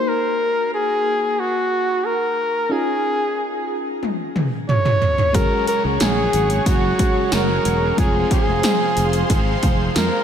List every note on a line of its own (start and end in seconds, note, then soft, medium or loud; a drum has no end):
0.00 2.33 A#3 medium
0.00 2.34 D#4 medium
0.00 2.34 F#4 medium
0.00 2.34 A#4 medium
0.08 0.73 A#4 loud
0.74 1.41 G#4 loud
1.40 2.07 F#4 loud
2.06 2.74 A#4 medium
2.69 5.30 C#4 medium
2.69 5.30 D#4 medium
2.69 5.31 F4 medium
2.69 5.31 G#4 medium
2.69 3.70 G#4 medium
4.03 high tom medium
4.36 mid tom medium
4.69 5.37 C#5 loud
4.69 mid tom medium
4.85 mid tom medium
5.02 floor tom loud
5.18 floor tom medium
5.33 5.47 F#1 loud
5.33 6.64 F#2 medium
5.33 6.66 C#3 medium
5.33 6.95 G#3 medium
5.33 6.96 C#4 medium
5.33 6.96 F#4 medium
5.33 10.24 G#4 medium
5.33 6.96 G#4 medium
5.33 5.68 A#4 loud
5.33 7.95 C#5 medium
5.33 7.96 F#5 medium
5.33 7.95 C#6 medium
5.33 kick loud
5.33 closed hi-hat medium
5.37 6.67 F#3 medium
5.67 5.83 A#4 loud
5.67 closed hi-hat medium
5.84 5.97 C#2 medium
6.00 6.26 A#1 medium
6.00 6.63 G#4 loud
6.00 snare loud
6.00 closed hi-hat medium
6.00 tambourine medium
6.33 6.58 G#1 medium
6.33 closed hi-hat medium
6.50 closed hi-hat medium
6.66 6.91 F#1 medium
6.66 7.30 F#2 medium
6.66 7.32 C#3 medium
6.66 7.33 F#3 medium
6.66 7.35 F#4 medium
6.66 kick loud
6.66 closed hi-hat medium
6.99 7.96 G#3 medium
6.99 7.98 C#4 soft
6.99 7.98 F#4 soft
6.99 7.98 G#4 medium
6.99 kick medium
6.99 closed hi-hat medium
7.31 7.57 F#1 medium
7.31 7.97 F#2 medium
7.31 7.98 C#3 medium
7.31 7.99 F#3 medium
7.31 7.98 A#4 loud
7.31 snare loud
7.31 closed hi-hat medium
7.31 tambourine medium
7.65 7.90 E1 medium
7.65 closed hi-hat medium
7.97 8.23 F1 loud
7.97 9.28 F2 medium
7.97 9.29 C3 medium
7.97 10.24 G#3 medium
7.97 10.24 C4 medium
7.97 10.24 F4 medium
7.97 8.29 G#4 loud
7.97 10.24 G#4 medium
7.97 10.24 C5 medium
7.97 10.24 F5 medium
7.97 10.24 C6 medium
7.97 kick loud
7.97 closed hi-hat medium
8.01 9.30 F3 medium
8.31 9.66 G#4 loud
8.31 kick loud
8.31 closed hi-hat medium
8.47 8.60 F1 medium
8.63 snare loud
8.63 closed hi-hat medium
8.63 tambourine medium
8.97 9.22 F1 loud
8.97 closed hi-hat medium
9.13 closed hi-hat medium
9.29 9.55 G#1 loud
9.29 9.94 F2 medium
9.29 9.95 C3 medium
9.29 9.96 F3 medium
9.29 kick loud
9.29 closed hi-hat medium
9.63 9.88 F1 medium
9.63 kick medium
9.63 closed hi-hat medium
9.95 10.24 F2 medium
9.95 10.08 F2 loud
9.95 10.24 C3 medium
9.95 10.24 F3 medium
9.95 10.24 A#4 loud
9.95 snare loud
9.95 closed hi-hat medium
9.95 tambourine medium